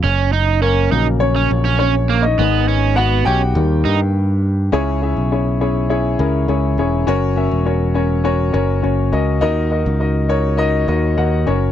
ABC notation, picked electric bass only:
X:1
M:4/4
L:1/16
Q:1/4=102
K:D#phr
V:1 name="Picked electric bass" clef=bass
F,,,6 A,,,4 A,,,6 | G,,,6 B,,,2 D,,2 =G,,6 | C,,3 B,,,6- B,,, C,,2 C,,2 E,,,2 | F,,,3 E,,,6- E,,, F,,,2 F,,,2 C,,2 |
D,,3 C,,6- C,, D,,2 D,,2 F,,,2 |]